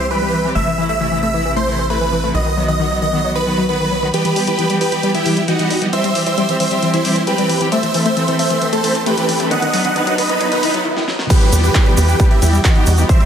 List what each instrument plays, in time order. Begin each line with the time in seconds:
Already playing: analog synth bass C2
0.11 string section E3 G3 C4 G4, synth arpeggio sound E3, supersaw synth B4
0.22 string section E3 G3 C4 G4, synth arpeggio sound G3
0.33 synth arpeggio sound E3
0.44 string section E3 G3 C4 G4, synth arpeggio sound E3
0.55 analog synth bass A1, string section C3 E3 A3 E4, synth arpeggio sound A3, supersaw synth E5
0.67 synth arpeggio sound E3
0.78 string section C3 E3 A3 E4, synth arpeggio sound E3
0.89 synth arpeggio sound A3, supersaw synth E5
1.00 string section C3 E3 A3 E4, synth arpeggio sound E3
1.12 string section C3 E3 A3 E4, synth arpeggio sound E3
1.23 synth arpeggio sound A3, supersaw synth E5
1.34 string section C3 E3 A3 E4, synth arpeggio sound E3
1.45 string section C3 E3 A3 E4, synth arpeggio sound E3
1.56 synth arpeggio sound A3, supersaw synth C5
1.68 string section C3 E3 A3 E4, synth arpeggio sound E3
1.79 synth arpeggio sound E3
1.90 string section C3 E3 A3 E4, synth arpeggio sound A3, supersaw synth B4
2.01 string section C3 E3 A3 E4, synth arpeggio sound E3
2.12 synth arpeggio sound E3
2.23 string section C3 E3 A3 E4, synth arpeggio sound A3
2.35 analog synth bass B1, string section D#3 F#3 B3 F#4, synth arpeggio sound D#3, supersaw synth D#5
2.46 synth arpeggio sound D#3
2.57 string section D#3 F#3 B3 F#4, synth arpeggio sound F#3
2.68 synth arpeggio sound D#3, supersaw synth D#5
2.79 string section D#3 F#3 B3 F#4, synth arpeggio sound D#3
2.91 string section D#3 F#3 B3 F#4, synth arpeggio sound F#3
3.02 synth arpeggio sound D#3, supersaw synth D#5
3.13 string section D#3 F#3 B3 F#4, synth arpeggio sound D#3
3.24 string section D#3 F#3 B3 F#4, synth arpeggio sound F#3
3.35 synth arpeggio sound D#3, supersaw synth B4
3.47 string section D#3 F#3 B3 F#4, synth arpeggio sound D#3
3.58 synth arpeggio sound F#3
3.69 synth arpeggio sound D#3, string section D#3 F#3 B3 F#4, supersaw synth B4
3.80 string section D#3 F#3 B3 F#4, synth arpeggio sound D#3
3.91 synth arpeggio sound F#3
4.03 synth arpeggio sound D#3, string section D#3 F#3 B3 F#4
4.14 synth arpeggio sound E3, string section E3 G3 B3 G4, supersaw synth G4 B4, closed hi-hat, riser
4.25 synth arpeggio sound E3, closed hi-hat
4.36 string section E3 G3 B3 G4, synth arpeggio sound G3, open hi-hat
4.47 synth arpeggio sound E3, supersaw synth G4 B4, closed hi-hat
4.59 synth arpeggio sound E3, string section E3 G3 B3 G4, closed hi-hat
4.70 string section E3 G3 B3 G4, synth arpeggio sound G3, closed hi-hat
4.81 synth arpeggio sound E3, supersaw synth G4 B4, open hi-hat
4.92 string section E3 G3 B3 G4, synth arpeggio sound E3, closed hi-hat
5.03 string section E3 G3 B3 G4, synth arpeggio sound G3, closed hi-hat
5.15 synth arpeggio sound E3, supersaw synth E4 G4, closed hi-hat
5.26 synth arpeggio sound E3, string section E3 G3 B3 G4, open hi-hat
5.37 synth arpeggio sound G3, closed hi-hat
5.48 string section E3 G3 B3 G4, synth arpeggio sound E3, supersaw synth D#4 F#4, closed hi-hat
5.59 string section E3 G3 B3 G4, synth arpeggio sound E3, closed hi-hat
5.70 synth arpeggio sound G3, open hi-hat
5.82 string section E3 G3 B3 G4, synth arpeggio sound E3, closed hi-hat
5.93 string section E3 G3 C4 G4, synth arpeggio sound E3, supersaw synth C5 E5, closed hi-hat
6.04 synth arpeggio sound G3, closed hi-hat
6.15 string section E3 G3 C4 G4, synth arpeggio sound E3, open hi-hat
6.26 synth arpeggio sound E3, supersaw synth C5 E5, closed hi-hat
6.37 string section E3 G3 C4 G4, synth arpeggio sound G3, closed hi-hat
6.49 string section E3 G3 C4 G4, synth arpeggio sound E3, closed hi-hat
6.60 synth arpeggio sound E3, supersaw synth C5 E5, open hi-hat
6.71 string section E3 G3 C4 G4, synth arpeggio sound G3, closed hi-hat
6.82 string section E3 G3 C4 G4, synth arpeggio sound E3, closed hi-hat
6.94 synth arpeggio sound E3, supersaw synth E4 C5, closed hi-hat
7.05 string section E3 G3 C4 G4, synth arpeggio sound G3, open hi-hat
7.16 synth arpeggio sound E3, closed hi-hat
7.27 string section E3 G3 C4 G4, synth arpeggio sound E3, supersaw synth G4 B4, closed hi-hat
7.38 string section E3 G3 C4 G4, synth arpeggio sound G3, closed hi-hat
7.50 synth arpeggio sound E3, open hi-hat
7.61 string section E3 G3 C4 G4, synth arpeggio sound E3, closed hi-hat
7.72 string section E3 A3 C4 A4, synth arpeggio sound A3, supersaw synth C5 E5, closed hi-hat
7.83 synth arpeggio sound E3, closed hi-hat
7.94 string section E3 A3 C4 A4, synth arpeggio sound E3, open hi-hat
8.06 synth arpeggio sound A3, supersaw synth C5 E5, closed hi-hat
8.17 string section E3 A3 C4 A4, synth arpeggio sound E3, closed hi-hat
8.28 synth arpeggio sound E3, string section E3 A3 C4 A4, closed hi-hat
8.39 synth arpeggio sound A3, supersaw synth C5 E5, open hi-hat
8.50 synth arpeggio sound E3, string section E3 A3 C4 A4, closed hi-hat
8.61 string section E3 A3 C4 A4, synth arpeggio sound E3, closed hi-hat
8.73 synth arpeggio sound A3, supersaw synth A4 C5, closed hi-hat
8.84 synth arpeggio sound E3, string section E3 A3 C4 A4, open hi-hat
8.95 synth arpeggio sound E3, closed hi-hat
9.06 string section E3 A3 C4 A4, synth arpeggio sound A3, supersaw synth G4 B4, closed hi-hat
9.17 string section E3 A3 C4 A4, synth arpeggio sound E3, closed hi-hat
9.29 synth arpeggio sound E3, open hi-hat
9.40 string section E3 A3 C4 A4, synth arpeggio sound A3, closed hi-hat
9.51 synth arpeggio sound D#3, string section F#3 B3 D#4 B4, supersaw synth D#5 F#5, closed hi-hat
9.62 synth arpeggio sound D#3, closed hi-hat
9.73 synth arpeggio sound F#3, string section F#3 B3 D#4 B4, open hi-hat
9.84 synth arpeggio sound D#3, supersaw synth D#5 F#5, closed hi-hat
9.96 synth arpeggio sound D#3, string section F#3 B3 D#4 B4, closed hi-hat
10.07 synth arpeggio sound F#3, string section F#3 B3 D#4 B4, closed hi-hat
10.18 synth arpeggio sound D#3, supersaw synth B4 D#5, open hi-hat
10.29 synth arpeggio sound D#3, string section F#3 B3 D#4 B4, closed hi-hat
10.40 synth arpeggio sound F#3, string section F#3 B3 D#4 B4, closed hi-hat
10.52 synth arpeggio sound D#3, supersaw synth D#4 B4, closed hi-hat
10.63 synth arpeggio sound D#3, string section F#3 B3 D#4 B4, open hi-hat
10.74 synth arpeggio sound F#3, closed hi-hat
10.85 synth arpeggio sound D#3
10.97 synth arpeggio sound D#3, snare
11.08 synth arpeggio sound F#3, snare
11.19 synth arpeggio sound D#3, snare
11.30 synth arpeggio sound E3, string section E3 G3 B3 G4, supersaw synth G4 B4, kick, closed hi-hat, crash, downlifter, shaker
11.41 synth arpeggio sound E3, closed hi-hat
11.52 analog synth bass E2, string section E3 G3 B3 G4, synth arpeggio sound G3, open hi-hat, ride, shaker
11.64 synth arpeggio sound E3, supersaw synth G4 B4, closed hi-hat, shaker
11.75 synth arpeggio sound E3, string section E3 G3 B3 G4, kick, clap, closed hi-hat, shaker
11.86 string section E3 G3 B3 G4, synth arpeggio sound G3, closed hi-hat
11.97 analog synth bass E2, synth arpeggio sound E3, supersaw synth G4 B4, open hi-hat, ride, shaker
12.08 synth arpeggio sound E3, string section E3 G3 B3 G4, closed hi-hat, shaker
12.19 string section E3 G3 B3 G4, synth arpeggio sound G3, kick, closed hi-hat, shaker
12.31 synth arpeggio sound E3, supersaw synth E4 G4, closed hi-hat
12.42 analog synth bass E2, string section E3 G3 B3 G4, synth arpeggio sound E3, open hi-hat, ride, shaker
12.53 synth arpeggio sound G3, closed hi-hat, shaker
12.64 synth arpeggio sound E3, string section E3 G3 B3 G4, supersaw synth D#4 F#4, kick, clap, closed hi-hat, shaker
12.75 string section E3 G3 B3 G4, synth arpeggio sound E3, closed hi-hat
12.86 analog synth bass E2, synth arpeggio sound G3, open hi-hat, ride, shaker
12.97 string section E3 G3 B3 G4, synth arpeggio sound E3, closed hi-hat, shaker
13.09 string section E3 G3 C4 G4, synth arpeggio sound E3, supersaw synth C5 E5, kick, closed hi-hat, shaker
13.20 synth arpeggio sound G3, closed hi-hat